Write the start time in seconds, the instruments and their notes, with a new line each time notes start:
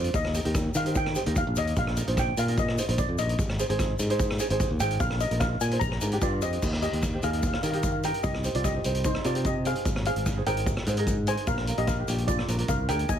Already playing: fingered electric bass F2, ukulele D4 F4 C5
0.04 closed hi-hat, shaker
0.14 fingered electric bass D#2, steel pan D#5, kick, closed hi-hat, shaker
0.24 cross-stick
0.34 ukulele D#4 G4 A#4, closed hi-hat, shaker
0.44 fingered electric bass D#2, ukulele D#4 G4 A#4, closed hi-hat
0.55 kick, cross-stick, closed hi-hat, shaker
0.74 fingered electric bass D#3, steel pan F5, closed hi-hat, shaker
0.85 ukulele D#4 G4 C5, closed hi-hat, shaker
0.95 steel pan G5, kick, closed hi-hat, shaker
1.06 cross-stick
1.15 ukulele D#4 G4 C5, closed hi-hat, shaker
1.26 fingered electric bass D#2, ukulele D#4 G4 A#4, closed hi-hat, shaker
1.36 steel pan F5, kick, closed hi-hat, shaker
1.47 fingered electric bass A#1
1.56 fingered electric bass D#2, ukulele D#4 G4 A#4, steel pan D#5, closed hi-hat, shaker
1.67 closed hi-hat, shaker
1.76 fingered electric bass A#1, steel pan F5, kick, closed hi-hat, shaker
1.87 cross-stick
1.97 ukulele D#4 F4 A#4, closed hi-hat, shaker
2.07 fingered electric bass A#1, ukulele D#4 F4 C5, closed hi-hat
2.17 steel pan G5, kick, cross-stick, closed hi-hat, shaker
2.37 fingered electric bass A#2, steel pan F5, closed hi-hat, shaker
2.48 ukulele D#4 F4 A#4, closed hi-hat
2.57 steel pan D#5, kick, closed hi-hat, shaker
2.68 cross-stick
2.78 ukulele D#4 F4 C5, closed hi-hat, shaker
2.88 fingered electric bass A#1, ukulele D#4 F4 C5, closed hi-hat
2.98 steel pan D5, kick, closed hi-hat, shaker
3.09 fingered electric bass F2
3.18 fingered electric bass A#1, ukulele D#4 F4 A#4, steel pan D#5, closed hi-hat, shaker
3.29 closed hi-hat, shaker
3.39 fingered electric bass G#1, kick, closed hi-hat, shaker
3.49 cross-stick
3.59 ukulele D#4 G#4 C5, closed hi-hat, shaker
3.69 fingered electric bass G#1, ukulele D#4 G#4 C5, closed hi-hat
3.79 kick, cross-stick, closed hi-hat, shaker
3.99 fingered electric bass G#2, closed hi-hat, shaker
4.10 ukulele D#4 G#4 C5, closed hi-hat, shaker
4.20 kick, closed hi-hat, shaker
4.30 cross-stick
4.39 ukulele D#4 G#4 C5, closed hi-hat, shaker
4.50 fingered electric bass G#1, ukulele D#4 G#4 C5, closed hi-hat
4.60 kick, closed hi-hat, shaker
4.70 fingered electric bass D#2
4.80 fingered electric bass G#1, ukulele D#4 G#4 C5, steel pan G5, closed hi-hat, shaker
4.91 closed hi-hat
5.00 fingered electric bass A#1, steel pan F5, kick, closed hi-hat, shaker
5.10 cross-stick
5.20 ukulele D#4 F4 A#4, steel pan D#5, closed hi-hat, shaker
5.31 fingered electric bass A#1, ukulele D#4 F4 A#4, closed hi-hat
5.40 steel pan F5, kick, cross-stick, closed hi-hat, shaker
5.61 fingered electric bass A#2, steel pan G#5, closed hi-hat, shaker
5.71 ukulele D#4 F4 C5, closed hi-hat, shaker
5.79 fingered electric bass A#1, steel pan A#5, kick, closed hi-hat, shaker
5.92 cross-stick
6.01 fingered electric bass G#2, ukulele D4 F4 A#4, closed hi-hat, shaker
6.12 ukulele D4 F4 G4, closed hi-hat, shaker
6.21 fingered electric bass G2, steel pan F4 D5, kick, closed hi-hat, shaker
6.42 fingered electric bass F2, ukulele D4 F4 C5, steel pan G4 D#5, closed hi-hat, shaker
6.53 closed hi-hat, shaker
6.62 fingered electric bass D#2, kick, crash, shaker
6.73 cross-stick
6.82 ukulele D#4 G4 A#4, steel pan G4 D#5, closed hi-hat, shaker
6.93 fingered electric bass D#2, closed hi-hat
7.03 kick, cross-stick, closed hi-hat, shaker
7.13 ukulele D#4 G4 C5
7.23 fingered electric bass D#2, ukulele D#4 G4 A#4, steel pan G#4 F5, closed hi-hat, shaker
7.31 steel pan F5, closed hi-hat
7.39 steel pan F5, kick, closed hi-hat, shaker
7.47 steel pan F5
7.53 steel pan F5, cross-stick
7.62 fingered electric bass D#3, ukulele D#4 G4 A#4, steel pan F5, closed hi-hat, shaker
7.70 ukulele D#4 G4, steel pan F5, closed hi-hat
7.75 ukulele A#4, steel pan F5
7.83 steel pan F5, kick, closed hi-hat, shaker
7.92 steel pan F5
8.03 ukulele D#4 G4 A#4, steel pan A#4 G5, closed hi-hat, shaker
8.14 closed hi-hat
8.23 fingered electric bass C2, steel pan G4 D#5, kick, closed hi-hat, shaker
8.34 cross-stick
8.44 ukulele D#4 G4 C5, closed hi-hat, shaker
8.55 fingered electric bass C2, steel pan F4 D5, closed hi-hat
8.64 steel pan G4 D#5, kick, cross-stick, closed hi-hat, shaker
8.75 ukulele D#4 G4 C5
8.84 fingered electric bass C2, ukulele D#4 G4 C5, closed hi-hat, shaker
8.95 closed hi-hat
9.04 steel pan D#4 C5, kick, closed hi-hat, shaker
9.15 cross-stick
9.24 fingered electric bass C3, ukulele D#4 G4 C5, steel pan F4 D5, closed hi-hat, shaker
9.35 ukulele D#4 G4 C5, closed hi-hat
9.44 steel pan G4 D#5, kick, closed hi-hat, shaker
9.64 ukulele D#4 G4 C5, steel pan G#4 F5, closed hi-hat, shaker
9.75 closed hi-hat
9.85 fingered electric bass G#1, kick, closed hi-hat, shaker
9.96 cross-stick
10.05 ukulele D#4 G#4 C5, steel pan G#4 F5, closed hi-hat, shaker
10.16 fingered electric bass G#1, closed hi-hat
10.26 kick, cross-stick, closed hi-hat, shaker
10.36 ukulele D#4 G#4 C5
10.46 fingered electric bass G#1, ukulele D#4 G#4 C5, steel pan A#4 G5, closed hi-hat, shaker
10.57 closed hi-hat
10.66 kick, closed hi-hat, shaker
10.77 cross-stick
10.86 fingered electric bass G#2, ukulele D#4 G#4 C5, closed hi-hat, shaker
10.97 ukulele D#4 G#4 A#4, closed hi-hat
11.07 kick, closed hi-hat, shaker
11.27 ukulele D#4 G#4 A#4, steel pan C5 G#5, closed hi-hat, shaker
11.37 closed hi-hat
11.47 fingered electric bass A#1, steel pan A#4 F5, kick, closed hi-hat, shaker
11.58 cross-stick
11.67 ukulele D4 F4 A#4, closed hi-hat, shaker
11.78 fingered electric bass A#1, steel pan G4 D#5, closed hi-hat
11.87 steel pan A#4 F5, kick, cross-stick, closed hi-hat, shaker
11.98 ukulele D4 F4 G4
12.08 fingered electric bass A#1, ukulele D4 F4 G4, closed hi-hat, shaker
12.18 closed hi-hat
12.28 steel pan F4 D5, kick, closed hi-hat, shaker
12.39 cross-stick
12.48 fingered electric bass A#1, ukulele D4 F4 A#4, closed hi-hat, shaker
12.58 ukulele D4 F4 A#4, closed hi-hat
12.68 fingered electric bass C2, steel pan A#4 F5, kick, closed hi-hat, shaker
12.88 fingered electric bass D2, ukulele D4 F4 G#4, steel pan A#4 G5, closed hi-hat, shaker
12.99 closed hi-hat
13.09 fingered electric bass D#2, steel pan D#5 G#5, kick, closed hi-hat, shaker